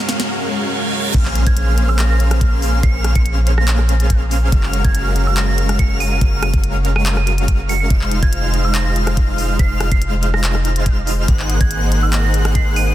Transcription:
Already playing: analog synth pad F#2 F#3 A#3 G#4 F5, supersaw synth G#3 C#4 F#4 A#4 F5, riser
0.09 snare, closed hi-hat
0.20 snare
0.30 reverse cymbal
1.14 808-style bass A#1, supersaw synth A#3 C#4 G#4 C5 F5, digital synth lead F6, kick, closed hi-hat, crash, impact
1.25 clap
1.35 closed hi-hat
1.47 808-style bass A#1, supersaw synth A#3 C#4 G#4 C5 F5, digital synth lead F6, synth bell G#6, kick, closed hi-hat
1.57 closed hi-hat
1.78 closed hi-hat
1.89 synth bell F6
1.99 synth bell A#6, clap, closed hi-hat
2.10 synth bell A#6
2.20 closed hi-hat
2.31 cross-stick, closed hi-hat
2.41 kick, closed hi-hat
2.62 open hi-hat
2.83 808-style bass A#1, supersaw synth A#3 C#4 G#4 C5 F5, digital synth lead F6, synth bell C#7, kick, closed hi-hat
3.04 cross-stick, closed hi-hat
3.15 808-style bass A#1, supersaw synth A#3 C#4 G#4 C5 F5, digital synth lead F6, synth bell C#7, kick, closed hi-hat
3.26 closed hi-hat
3.47 closed hi-hat
3.58 synth bell A#6, cross-stick
3.68 clap, closed hi-hat
3.79 cross-stick
3.89 closed hi-hat
4.00 closed hi-hat
4.10 kick, closed hi-hat
4.31 open hi-hat
4.52 808-style bass F#1, supersaw synth G#3 C#4 F#4 A#4 F5, digital synth lead F6, kick, closed hi-hat
4.63 clap
4.73 closed hi-hat
4.85 808-style bass F#1, supersaw synth G#3 C#4 F#4 A#4 F5, digital synth lead F6, synth bell G#6, kick, closed hi-hat
4.95 closed hi-hat
5.16 closed hi-hat
5.27 synth bell F6
5.37 synth bell A#6, clap, closed hi-hat
5.48 synth bell A#6
5.58 closed hi-hat
5.69 cross-stick, closed hi-hat
5.79 synth bell C#7, kick, closed hi-hat
6.00 synth bell D#7, open hi-hat
6.11 synth bell D#7
6.21 808-style bass F#1, supersaw synth G#3 C#4 F#4 A#4 F5, digital synth lead F6, kick, closed hi-hat
6.42 synth bell D#7, cross-stick, closed hi-hat
6.54 808-style bass F#1, supersaw synth G#3 C#4 F#4 A#4 F5, digital synth lead F6, kick, closed hi-hat
6.64 closed hi-hat
6.85 closed hi-hat
6.96 synth bell D#7, cross-stick
7.06 clap, closed hi-hat
7.17 synth bell D#7, cross-stick
7.27 synth bell D#7, closed hi-hat
7.38 closed hi-hat
7.48 kick, closed hi-hat
7.69 synth bell C#7, open hi-hat
7.80 synth bell C#7
7.90 808-style bass F1, supersaw synth G#3 D#4 F4 C5 F5, digital synth lead F6, kick, closed hi-hat
8.01 clap
8.11 closed hi-hat
8.23 808-style bass F1, supersaw synth G#3 D#4 F4 C5 F5, digital synth lead F6, synth bell G#6, kick, closed hi-hat
8.33 closed hi-hat
8.54 closed hi-hat
8.65 synth bell F6
8.75 synth bell A#6, clap, closed hi-hat
8.86 synth bell A#6
8.96 closed hi-hat
9.07 cross-stick, closed hi-hat
9.17 kick, closed hi-hat
9.38 open hi-hat
9.59 808-style bass F1, supersaw synth G#3 D#4 F4 C5 F5, digital synth lead F6, synth bell C7, kick, closed hi-hat
9.80 cross-stick, closed hi-hat
9.91 808-style bass F1, supersaw synth G#3 D#4 F4 C5 F5, digital synth lead F6, synth bell C7, kick, closed hi-hat
10.02 closed hi-hat
10.23 closed hi-hat
10.34 synth bell A#6, cross-stick
10.44 clap, closed hi-hat
10.55 cross-stick
10.65 closed hi-hat
10.76 closed hi-hat
10.86 kick, closed hi-hat
11.07 open hi-hat
11.28 808-style bass G#1, supersaw synth A#3 D#4 G#4 C5 F#5, digital synth lead F#6, kick, closed hi-hat
11.39 clap
11.50 closed hi-hat
11.61 808-style bass G#1, supersaw synth A#3 D#4 G#4 C5 F#5, digital synth lead F#6, synth bell G#6, kick, closed hi-hat
11.71 closed hi-hat
11.92 closed hi-hat
12.03 synth bell F6
12.13 synth bell A#6, clap, closed hi-hat
12.24 synth bell A#6
12.34 closed hi-hat
12.45 cross-stick, closed hi-hat
12.55 synth bell C7, kick, closed hi-hat
12.76 synth bell D#7, open hi-hat
12.87 synth bell D#7

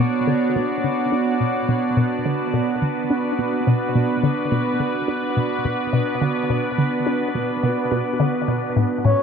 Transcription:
Already playing: ambient pad B3 D4 F#4 C#5 D5
0.27 synth arpeggio sound D3
0.56 synth arpeggio sound B2
0.84 synth arpeggio sound D3
1.12 synth arpeggio sound D4
1.40 synth arpeggio sound B2
1.56 ambient pad B4
1.69 synth arpeggio sound B2
1.97 synth arpeggio sound B2
2.25 synth arpeggio sound D3
2.54 synth arpeggio sound B2
2.82 synth arpeggio sound D3
3.10 synth arpeggio sound D4
3.39 synth arpeggio sound B2
3.67 synth arpeggio sound B2
3.95 synth arpeggio sound B2
4.23 synth arpeggio sound D3
4.52 synth arpeggio sound B2
4.80 synth arpeggio sound D3
5.08 synth arpeggio sound D4
5.37 synth arpeggio sound B2
5.65 synth arpeggio sound B2
5.93 synth arpeggio sound B2
6.21 synth arpeggio sound D3
6.50 synth arpeggio sound B2
6.78 synth arpeggio sound D3
7.06 synth arpeggio sound D4
7.35 synth arpeggio sound B2
7.63 synth arpeggio sound B2
7.91 synth arpeggio sound B2
8.20 synth arpeggio sound D3
8.48 synth arpeggio sound B2
8.76 synth arpeggio sound A2, ambient pad B3
8.91 ambient pad E4
9.05 synth arpeggio sound A2, soft synth lead C#5

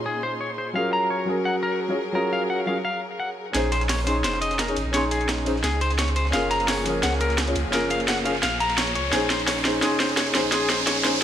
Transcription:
Already playing: string section A#2 C#4 D#4 F4 G#4 C6
0.06 clean electric guitar G#4
0.23 clean electric guitar C5
0.41 clean electric guitar C#5
0.58 clean electric guitar C5
0.73 felt piano F#3 C#4 F4 G#4, string section F#3 G#4 A#4, clean electric guitar F5
0.77 felt piano A#4
0.93 clean electric guitar A#5
1.10 clean electric guitar C#5
1.25 felt piano F#3 C#4 G#4
1.30 felt piano A#4
1.45 clean electric guitar F#5
1.63 clean electric guitar A#4
1.88 felt piano F#3 C#4 F4 G#4 C#5
2.12 felt piano F#3 C#4 F4 G#4, clean electric guitar A#4
2.17 felt piano A#4
2.33 clean electric guitar F5
2.50 clean electric guitar F#5
2.66 felt piano F#3 C#4 F4 G#4 A#4, clean electric guitar F5
2.85 clean electric guitar F5
3.20 clean electric guitar F#5
3.52 sub bass A#1, felt piano C#4 D#4 G#4, string section C#4 D#4 G#4, clean electric guitar G#4, snare, closed hi-hat, ride, riser
3.57 felt piano C5
3.72 clean electric guitar C5, snare, closed hi-hat, ride
3.81 snare, closed hi-hat
3.89 clean electric guitar C#5, snare, closed hi-hat, open hi-hat
3.99 snare
4.04 felt piano C#4 D#4 G#4, clean electric guitar C5, snare, closed hi-hat, ride
4.09 felt piano C6
4.24 sub bass F1, clean electric guitar C5, snare, closed hi-hat, ride
4.33 snare
4.41 clean electric guitar D#5, closed hi-hat, ride
4.51 snare, closed hi-hat
4.59 clean electric guitar A#4, snare, closed hi-hat, ride
4.67 felt piano C#4 D#4 G#4 C#5, closed hi-hat, ride
4.76 sub bass G#1, closed hi-hat, ride
4.86 sub bass A#1
4.92 felt piano C#4 D#4 G#4, clean electric guitar C#5, snare, closed hi-hat, ride
4.96 felt piano C6
5.11 clean electric guitar G#4, closed hi-hat, ride
5.21 closed hi-hat
5.29 snare, closed hi-hat, ride
5.38 snare
5.45 felt piano C#4 D#4 G#4 C5, closed hi-hat, ride
5.56 snare
5.64 sub bass C#2, clean electric guitar G#4, snare, closed hi-hat, ride
5.81 clean electric guitar C5, closed hi-hat, ride
5.90 snare, closed hi-hat
5.98 clean electric guitar C#5, snare, closed hi-hat, ride
6.08 closed hi-hat
6.16 clean electric guitar C5, closed hi-hat, ride
6.25 snare
6.31 sub bass F#1, string section F3 A#3, felt piano C#4 F4 G#4, clean electric guitar F5, snare, closed hi-hat, ride
6.35 felt piano A#4
6.51 clean electric guitar A#5, snare, closed hi-hat, ride
6.60 snare, closed hi-hat
6.68 clean electric guitar C#5, snare, closed hi-hat, open hi-hat
6.78 snare
6.83 felt piano F3 C#4 G#4, snare, closed hi-hat, ride
6.88 felt piano A#4
7.03 sub bass C#2, clean electric guitar F#5, snare, closed hi-hat, ride
7.12 snare
7.21 clean electric guitar A#4, closed hi-hat, ride
7.30 snare, closed hi-hat
7.38 snare, closed hi-hat, ride
7.46 felt piano C#4 F4 G#4 C#5, closed hi-hat, ride
7.55 sub bass C#2, closed hi-hat, ride
7.65 sub bass F#1
7.70 felt piano C#4 F4 G#4, clean electric guitar A#4, snare, closed hi-hat, ride
7.75 felt piano A#4
7.90 clean electric guitar F5, closed hi-hat, ride
8.00 closed hi-hat
8.08 clean electric guitar F#5, snare, closed hi-hat, ride
8.17 snare
8.24 felt piano C#4 F4 G#4 A#4, clean electric guitar F5, closed hi-hat, ride
8.35 snare
8.43 sub bass A#1, clean electric guitar F5, snare, closed hi-hat, ride
8.60 clean electric guitar A#5, closed hi-hat, ride
8.70 snare, closed hi-hat
8.78 clean electric guitar C#5, snare, closed hi-hat, ride
8.87 closed hi-hat
8.95 sub bass C#2, clean electric guitar C#5, closed hi-hat
9.10 sub bass A#1, felt piano C#4 D#4 G#4, string section C#4 D#4 G#4, clean electric guitar G#4, snare, closed hi-hat, ride
9.15 felt piano C5
9.30 clean electric guitar C5, snare, closed hi-hat, ride
9.39 snare, closed hi-hat
9.47 clean electric guitar C#5, snare, closed hi-hat, open hi-hat
9.57 snare
9.63 felt piano C#4 D#4 G#4, clean electric guitar C5, snare, closed hi-hat, ride
9.67 felt piano C5
9.80 sub bass F1, felt piano C#4 D#4 G#4, clean electric guitar G#4, snare, closed hi-hat, ride
9.84 felt piano C6
9.92 snare
10.00 clean electric guitar C5, snare, closed hi-hat, ride
10.09 snare, closed hi-hat
10.17 clean electric guitar C#5, snare, closed hi-hat, ride
10.27 closed hi-hat, ride
10.32 sub bass G#1, felt piano C#4 D#4 G#4, clean electric guitar C5, snare, closed hi-hat, ride
10.37 felt piano C5
10.44 sub bass A#1
10.50 felt piano C#4 D#4 G#4, clean electric guitar G#4, snare, closed hi-hat, ride
10.54 felt piano C6
10.69 clean electric guitar C5, snare, closed hi-hat, ride
10.79 closed hi-hat
10.87 clean electric guitar C#5, snare, closed hi-hat, ride
10.96 snare
11.02 felt piano C#4 D#4 G#4, clean electric guitar C5, snare, closed hi-hat, ride
11.06 felt piano C5
11.14 snare
11.20 felt piano C#4

